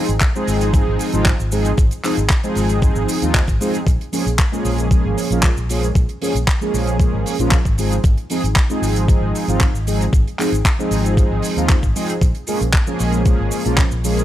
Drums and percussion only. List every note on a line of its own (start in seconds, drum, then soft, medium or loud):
0.09 closed hi-hat medium
0.09 cabasa soft
0.20 kick loud
0.20 clap loud
0.20 closed hi-hat medium
0.20 cabasa medium
0.36 cabasa soft
0.47 open hi-hat medium
0.47 cabasa medium
0.61 closed hi-hat medium
0.61 cabasa soft
0.73 kick loud
0.73 closed hi-hat medium
0.73 cabasa medium
0.99 open hi-hat loud
0.99 cabasa medium
1.12 closed hi-hat medium
1.12 cabasa soft
1.26 kick loud
1.26 clap loud
1.26 closed hi-hat medium
1.26 cabasa medium
1.40 cabasa medium
1.52 open hi-hat medium
1.52 cabasa medium
1.65 closed hi-hat medium
1.65 cabasa medium
1.77 kick loud
1.77 closed hi-hat medium
1.77 cabasa medium
1.91 closed hi-hat medium
1.91 cabasa medium
2.04 clap soft
2.04 open hi-hat loud
2.04 cabasa loud
2.17 closed hi-hat medium
2.17 cabasa soft
2.30 kick loud
2.30 clap loud
2.30 closed hi-hat medium
2.30 cabasa medium
2.43 closed hi-hat soft
2.43 cabasa soft
2.55 open hi-hat medium
2.55 cabasa medium
2.69 closed hi-hat medium
2.69 cabasa medium
2.82 kick loud
2.82 closed hi-hat medium
2.82 cabasa medium
2.96 cabasa medium
3.08 open hi-hat loud
3.08 cabasa medium
3.22 closed hi-hat medium
3.22 cabasa medium
3.34 kick loud
3.34 clap loud
3.34 closed hi-hat medium
3.34 cabasa medium
3.47 kick medium
3.47 closed hi-hat soft
3.47 cabasa soft
3.61 open hi-hat loud
3.61 cabasa loud
3.74 closed hi-hat medium
3.74 cabasa medium
3.87 kick loud
3.87 closed hi-hat medium
3.87 cabasa medium
4.01 closed hi-hat medium
4.13 open hi-hat loud
4.13 cabasa medium
4.27 closed hi-hat medium
4.27 cabasa medium
4.38 kick loud
4.38 clap loud
4.38 closed hi-hat medium
4.38 cabasa medium
4.53 cabasa medium
4.65 open hi-hat medium
4.65 cabasa medium
4.78 closed hi-hat medium
4.78 cabasa medium
4.91 kick loud
4.91 closed hi-hat medium
4.91 cabasa medium
5.18 open hi-hat loud
5.18 cabasa medium
5.30 closed hi-hat medium
5.30 cabasa medium
5.43 kick loud
5.43 clap loud
5.43 closed hi-hat medium
5.43 cabasa medium
5.57 cabasa soft
5.69 open hi-hat loud
5.69 cabasa loud
5.83 closed hi-hat medium
5.83 cabasa medium
5.95 kick loud
5.95 closed hi-hat medium
5.95 cabasa medium
6.09 closed hi-hat medium
6.21 open hi-hat loud
6.21 cabasa medium
6.35 closed hi-hat medium
6.35 cabasa medium
6.47 kick loud
6.47 clap loud
6.47 closed hi-hat medium
6.47 cabasa medium
6.62 cabasa soft
6.74 open hi-hat loud
6.74 cabasa medium
6.87 closed hi-hat medium
6.87 cabasa medium
7.00 kick loud
7.00 closed hi-hat medium
7.00 cabasa medium
7.26 open hi-hat loud
7.26 cabasa medium
7.39 closed hi-hat medium
7.39 cabasa medium
7.51 kick loud
7.51 clap loud
7.51 closed hi-hat medium
7.51 cabasa medium
7.65 kick medium
7.65 cabasa soft
7.78 open hi-hat loud
7.78 cabasa loud
7.92 closed hi-hat medium
7.92 cabasa medium
8.04 kick loud
8.04 closed hi-hat medium
8.04 cabasa medium
8.18 closed hi-hat medium
8.30 open hi-hat loud
8.30 cabasa medium
8.44 closed hi-hat medium
8.44 cabasa soft
8.56 kick loud
8.56 clap loud
8.56 closed hi-hat medium
8.56 cabasa medium
8.70 cabasa medium
8.83 open hi-hat loud
8.83 cabasa medium
8.96 closed hi-hat medium
8.96 cabasa soft
9.08 kick loud
9.08 closed hi-hat medium
9.08 cabasa medium
9.35 open hi-hat loud
9.35 cabasa medium
9.48 closed hi-hat medium
9.48 cabasa soft
9.60 kick loud
9.60 clap loud
9.60 closed hi-hat medium
9.60 cabasa medium
9.75 cabasa medium
9.87 open hi-hat loud
9.87 cabasa medium
10.01 closed hi-hat medium
10.01 cabasa soft
10.13 kick loud
10.13 closed hi-hat medium
10.13 cabasa medium
10.28 closed hi-hat medium
10.39 clap soft
10.39 open hi-hat loud
10.39 cabasa medium
10.52 closed hi-hat medium
10.52 cabasa medium
10.65 kick loud
10.65 clap loud
10.65 closed hi-hat medium
10.65 cabasa medium
10.80 cabasa soft
10.91 open hi-hat loud
10.91 cabasa medium
11.05 closed hi-hat medium
11.05 cabasa medium
11.17 kick loud
11.17 closed hi-hat medium
11.17 cabasa medium
11.42 open hi-hat loud
11.42 cabasa medium
11.58 closed hi-hat medium
11.58 cabasa medium
11.69 kick loud
11.69 clap loud
11.69 closed hi-hat medium
11.69 cabasa medium
11.83 kick medium
11.83 cabasa soft
11.96 open hi-hat loud
11.96 cabasa medium
12.09 closed hi-hat medium
12.09 cabasa medium
12.21 kick loud
12.21 closed hi-hat medium
12.21 cabasa medium
12.35 closed hi-hat medium
12.47 open hi-hat loud
12.47 cabasa medium
12.61 closed hi-hat medium
12.61 cabasa soft
12.73 kick loud
12.73 clap loud
12.73 closed hi-hat medium
12.73 cabasa medium
12.87 cabasa soft
12.99 open hi-hat medium
12.99 cabasa medium
13.12 closed hi-hat medium
13.12 cabasa medium
13.25 kick loud
13.25 closed hi-hat medium
13.25 cabasa medium
13.51 open hi-hat loud
13.51 cabasa loud
13.65 closed hi-hat medium
13.65 cabasa soft
13.78 kick loud
13.78 clap loud
13.78 closed hi-hat medium
13.78 cabasa medium
13.91 cabasa medium
14.04 open hi-hat loud
14.04 cabasa loud
14.17 closed hi-hat medium
14.17 cabasa medium